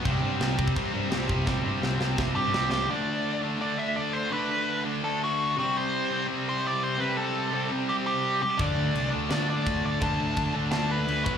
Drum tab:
CC |x---x---x---x---|----------------|----------------|----------------|
SD |----o-------o---|o---o-o-o---o-o-|----------------|----------------|
BD |o-----ooo-----o-|o-------o-------|----------------|----------------|

CC |----------------|----------------|x---x---x---x---|x---x---x---x---|
SD |----------------|----------------|--------o-------|--------o-------|
BD |----------------|----------------|o-----------o---|o---o---------o-|